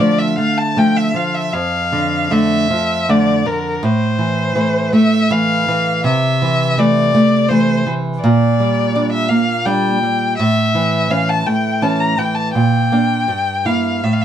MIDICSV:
0, 0, Header, 1, 3, 480
1, 0, Start_track
1, 0, Tempo, 773196
1, 954, Time_signature, 3, 2, 24, 8
1, 1915, Tempo, 744417
1, 3355, Tempo, 722022
1, 8155, Tempo, 753769
1, 9244, End_track
2, 0, Start_track
2, 0, Title_t, "Violin"
2, 0, Program_c, 0, 40
2, 0, Note_on_c, 0, 74, 68
2, 115, Note_on_c, 0, 76, 61
2, 124, Note_off_c, 0, 74, 0
2, 233, Note_off_c, 0, 76, 0
2, 237, Note_on_c, 0, 77, 65
2, 358, Note_on_c, 0, 81, 64
2, 367, Note_off_c, 0, 77, 0
2, 485, Note_on_c, 0, 79, 72
2, 494, Note_off_c, 0, 81, 0
2, 601, Note_on_c, 0, 76, 65
2, 610, Note_off_c, 0, 79, 0
2, 722, Note_on_c, 0, 77, 58
2, 731, Note_off_c, 0, 76, 0
2, 835, Note_on_c, 0, 76, 61
2, 844, Note_off_c, 0, 77, 0
2, 948, Note_on_c, 0, 77, 69
2, 957, Note_off_c, 0, 76, 0
2, 1437, Note_on_c, 0, 76, 70
2, 1446, Note_off_c, 0, 77, 0
2, 1920, Note_on_c, 0, 74, 68
2, 1930, Note_off_c, 0, 76, 0
2, 2159, Note_on_c, 0, 70, 58
2, 2169, Note_off_c, 0, 74, 0
2, 2398, Note_on_c, 0, 72, 59
2, 2408, Note_off_c, 0, 70, 0
2, 3113, Note_off_c, 0, 72, 0
2, 3116, Note_on_c, 0, 76, 65
2, 3356, Note_on_c, 0, 77, 78
2, 3366, Note_off_c, 0, 76, 0
2, 3843, Note_off_c, 0, 77, 0
2, 3847, Note_on_c, 0, 76, 74
2, 4335, Note_on_c, 0, 74, 73
2, 4345, Note_off_c, 0, 76, 0
2, 4798, Note_on_c, 0, 72, 68
2, 4808, Note_off_c, 0, 74, 0
2, 5038, Note_off_c, 0, 72, 0
2, 5279, Note_on_c, 0, 74, 66
2, 5854, Note_off_c, 0, 74, 0
2, 5883, Note_on_c, 0, 76, 72
2, 5994, Note_on_c, 0, 77, 67
2, 6004, Note_off_c, 0, 76, 0
2, 6237, Note_on_c, 0, 79, 67
2, 6247, Note_off_c, 0, 77, 0
2, 6713, Note_off_c, 0, 79, 0
2, 6717, Note_on_c, 0, 76, 71
2, 7203, Note_on_c, 0, 77, 66
2, 7213, Note_off_c, 0, 76, 0
2, 7327, Note_on_c, 0, 81, 69
2, 7336, Note_off_c, 0, 77, 0
2, 7439, Note_on_c, 0, 79, 64
2, 7449, Note_off_c, 0, 81, 0
2, 7680, Note_on_c, 0, 81, 60
2, 7690, Note_off_c, 0, 79, 0
2, 7796, Note_on_c, 0, 82, 66
2, 7806, Note_off_c, 0, 81, 0
2, 7920, Note_on_c, 0, 79, 57
2, 7930, Note_off_c, 0, 82, 0
2, 8028, Note_on_c, 0, 81, 60
2, 8038, Note_off_c, 0, 79, 0
2, 8154, Note_off_c, 0, 81, 0
2, 8158, Note_on_c, 0, 79, 72
2, 8868, Note_on_c, 0, 77, 52
2, 8878, Note_off_c, 0, 79, 0
2, 9109, Note_on_c, 0, 76, 44
2, 9119, Note_off_c, 0, 77, 0
2, 9169, Note_on_c, 0, 77, 45
2, 9179, Note_off_c, 0, 76, 0
2, 9223, Note_on_c, 0, 76, 44
2, 9232, Note_off_c, 0, 77, 0
2, 9244, Note_off_c, 0, 76, 0
2, 9244, End_track
3, 0, Start_track
3, 0, Title_t, "Nylon-string guitar"
3, 0, Program_c, 1, 24
3, 0, Note_on_c, 1, 50, 51
3, 0, Note_on_c, 1, 53, 36
3, 0, Note_on_c, 1, 57, 45
3, 213, Note_off_c, 1, 53, 0
3, 213, Note_off_c, 1, 57, 0
3, 236, Note_on_c, 1, 57, 43
3, 469, Note_off_c, 1, 57, 0
3, 474, Note_on_c, 1, 53, 36
3, 478, Note_on_c, 1, 57, 43
3, 690, Note_off_c, 1, 53, 0
3, 691, Note_off_c, 1, 57, 0
3, 707, Note_on_c, 1, 53, 40
3, 930, Note_off_c, 1, 50, 0
3, 951, Note_off_c, 1, 53, 0
3, 953, Note_on_c, 1, 41, 51
3, 1193, Note_on_c, 1, 50, 38
3, 1426, Note_off_c, 1, 50, 0
3, 1433, Note_on_c, 1, 50, 39
3, 1436, Note_on_c, 1, 57, 42
3, 1651, Note_off_c, 1, 50, 0
3, 1652, Note_off_c, 1, 57, 0
3, 1678, Note_on_c, 1, 53, 43
3, 1917, Note_on_c, 1, 50, 40
3, 1920, Note_on_c, 1, 57, 43
3, 2062, Note_off_c, 1, 53, 0
3, 2134, Note_off_c, 1, 50, 0
3, 2135, Note_off_c, 1, 57, 0
3, 2154, Note_on_c, 1, 50, 42
3, 2366, Note_off_c, 1, 41, 0
3, 2391, Note_off_c, 1, 50, 0
3, 2394, Note_on_c, 1, 45, 53
3, 2625, Note_on_c, 1, 52, 38
3, 2856, Note_off_c, 1, 52, 0
3, 2861, Note_on_c, 1, 52, 41
3, 2865, Note_on_c, 1, 57, 45
3, 3084, Note_off_c, 1, 52, 0
3, 3084, Note_off_c, 1, 57, 0
3, 3105, Note_on_c, 1, 57, 44
3, 3342, Note_off_c, 1, 57, 0
3, 3347, Note_on_c, 1, 52, 42
3, 3350, Note_on_c, 1, 57, 43
3, 3571, Note_off_c, 1, 52, 0
3, 3573, Note_off_c, 1, 57, 0
3, 3597, Note_on_c, 1, 52, 44
3, 3817, Note_off_c, 1, 45, 0
3, 3836, Note_on_c, 1, 48, 57
3, 3841, Note_off_c, 1, 52, 0
3, 4086, Note_on_c, 1, 52, 43
3, 4319, Note_off_c, 1, 52, 0
3, 4327, Note_on_c, 1, 52, 45
3, 4330, Note_on_c, 1, 57, 46
3, 4543, Note_off_c, 1, 52, 0
3, 4544, Note_off_c, 1, 57, 0
3, 4570, Note_on_c, 1, 57, 48
3, 4802, Note_off_c, 1, 57, 0
3, 4809, Note_on_c, 1, 52, 39
3, 4811, Note_on_c, 1, 57, 49
3, 5020, Note_off_c, 1, 52, 0
3, 5021, Note_off_c, 1, 57, 0
3, 5048, Note_on_c, 1, 52, 42
3, 5253, Note_off_c, 1, 48, 0
3, 5287, Note_off_c, 1, 52, 0
3, 5295, Note_on_c, 1, 46, 60
3, 5536, Note_on_c, 1, 55, 41
3, 5764, Note_off_c, 1, 55, 0
3, 5771, Note_on_c, 1, 55, 45
3, 5775, Note_on_c, 1, 62, 48
3, 5980, Note_off_c, 1, 55, 0
3, 5981, Note_off_c, 1, 62, 0
3, 6004, Note_on_c, 1, 58, 47
3, 6240, Note_on_c, 1, 55, 42
3, 6243, Note_on_c, 1, 62, 46
3, 6379, Note_off_c, 1, 58, 0
3, 6453, Note_off_c, 1, 55, 0
3, 6453, Note_off_c, 1, 62, 0
3, 6487, Note_on_c, 1, 55, 41
3, 6693, Note_off_c, 1, 46, 0
3, 6721, Note_off_c, 1, 55, 0
3, 6729, Note_on_c, 1, 45, 55
3, 6965, Note_on_c, 1, 52, 38
3, 7192, Note_off_c, 1, 52, 0
3, 7199, Note_on_c, 1, 52, 40
3, 7203, Note_on_c, 1, 61, 45
3, 7413, Note_off_c, 1, 52, 0
3, 7415, Note_off_c, 1, 61, 0
3, 7443, Note_on_c, 1, 57, 40
3, 7677, Note_on_c, 1, 52, 40
3, 7681, Note_on_c, 1, 61, 40
3, 7821, Note_off_c, 1, 57, 0
3, 7891, Note_off_c, 1, 52, 0
3, 7893, Note_off_c, 1, 61, 0
3, 7919, Note_on_c, 1, 52, 38
3, 8138, Note_off_c, 1, 45, 0
3, 8160, Note_off_c, 1, 52, 0
3, 8163, Note_on_c, 1, 46, 46
3, 8398, Note_on_c, 1, 58, 32
3, 8402, Note_on_c, 1, 62, 34
3, 8607, Note_off_c, 1, 58, 0
3, 8608, Note_off_c, 1, 62, 0
3, 8616, Note_off_c, 1, 46, 0
3, 8626, Note_on_c, 1, 43, 44
3, 8863, Note_on_c, 1, 58, 31
3, 8868, Note_on_c, 1, 64, 34
3, 9085, Note_off_c, 1, 58, 0
3, 9088, Note_off_c, 1, 64, 0
3, 9097, Note_off_c, 1, 43, 0
3, 9108, Note_on_c, 1, 45, 40
3, 9244, Note_off_c, 1, 45, 0
3, 9244, End_track
0, 0, End_of_file